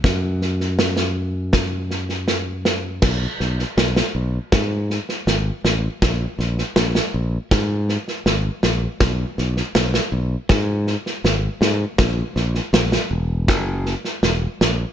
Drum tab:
CC |----------------|x---------------|----------------|----------------|
SD |o-oooo--o-ooo-o-|o-oooo--o-ooo-o-|o-oooo--o-ooo-o-|o-oooo--o-ooo-o-|
BD |o-------o-------|o-------o-------|o-------o-------|o-------o-------|

CC |----------------|
SD |o-oooo--o-ooo-o-|
BD |o-------o-------|